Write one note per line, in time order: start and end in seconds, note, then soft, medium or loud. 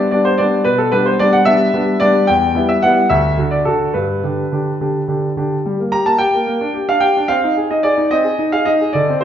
0.11 0.32 G3 soft
0.11 0.32 B3 soft
0.11 0.32 D4 soft
0.11 0.25 D5 medium
0.25 0.39 C5 medium
0.38 0.59 G3 soft
0.38 0.59 B3 soft
0.38 0.59 D4 soft
0.38 0.66 D5 medium
0.64 0.92 B2 soft
0.64 0.79 B4 medium
0.78 0.92 A4 medium
0.92 1.12 G3 soft
0.92 1.12 B3 soft
0.92 1.12 D4 soft
0.92 1.06 B4 medium
1.06 1.20 C5 medium
1.19 1.39 G3 soft
1.19 1.40 B3 soft
1.19 1.40 D4 soft
1.19 1.33 D5 medium
1.33 1.46 F#5 medium
1.45 1.66 G3 soft
1.45 1.66 B3 soft
1.45 1.66 D4 soft
1.45 2.00 E5 medium
1.74 1.93 G3 soft
1.74 1.93 B3 soft
1.74 1.93 D4 soft
2.00 2.20 G3 soft
2.00 2.20 B3 soft
2.00 2.21 D4 soft
2.00 2.27 D5 medium
2.27 2.55 E2 soft
2.27 2.69 G5 medium
2.55 2.75 G3 soft
2.55 2.75 B3 soft
2.55 2.76 E4 soft
2.69 2.83 E5 medium
2.82 3.03 G3 soft
2.82 3.03 B3 soft
2.82 3.04 E4 soft
2.82 3.08 F#5 medium
3.09 3.37 D2 medium
3.09 3.35 E5 medium
3.37 3.58 D3 soft
3.37 3.58 D4 soft
3.37 3.59 F#4 soft
3.51 3.66 D5 medium
3.65 3.87 D3 soft
3.65 3.87 D4 soft
3.65 3.87 F#4 soft
3.65 3.94 A4 medium
3.94 4.22 G2 soft
3.94 5.32 B4 soft
4.23 4.44 D3 soft
4.23 4.44 D4 soft
4.23 4.44 G4 soft
4.52 4.72 D3 soft
4.52 4.72 D4 soft
4.52 4.73 G4 soft
4.81 5.01 D3 soft
4.81 5.01 D4 soft
4.81 5.01 G4 soft
5.08 5.29 D3 soft
5.08 5.29 D4 soft
5.08 5.29 G4 soft
5.36 5.57 D3 soft
5.36 5.57 D4 soft
5.36 5.57 G4 soft
5.66 5.79 G3 soft
5.79 5.94 A#3 soft
5.92 6.07 G4 soft
5.92 6.06 A#5 medium
6.06 6.21 A#3 soft
6.06 6.20 A5 medium
6.18 6.34 G4 soft
6.18 6.84 G5 medium
6.34 6.45 A#3 soft
6.47 6.61 A#3 medium
6.61 6.76 D4 soft
6.74 6.89 G4 soft
6.89 7.03 D4 soft
6.89 7.03 F5 medium
7.00 7.17 G4 soft
7.00 7.29 G5 medium
7.17 7.31 D4 soft
7.28 7.43 C4 soft
7.28 7.54 F5 medium
7.44 7.58 D#4 soft
7.57 7.72 G#4 soft
7.71 7.86 D#4 soft
7.71 7.85 D#5 medium
7.83 7.99 G#4 soft
7.83 8.12 D5 medium
7.97 8.12 D#4 soft
8.11 8.25 C4 soft
8.11 8.49 D#5 medium
8.24 8.39 G#4 soft
8.39 8.54 D#4 soft
8.52 8.67 G#4 soft
8.52 8.67 F5 medium
8.65 8.81 D#4 soft
8.65 8.94 D#5 medium
8.81 8.95 G#4 soft
8.93 9.08 D3 soft
8.93 9.21 D5 medium
9.09 9.23 C4 soft
9.21 9.24 C5 medium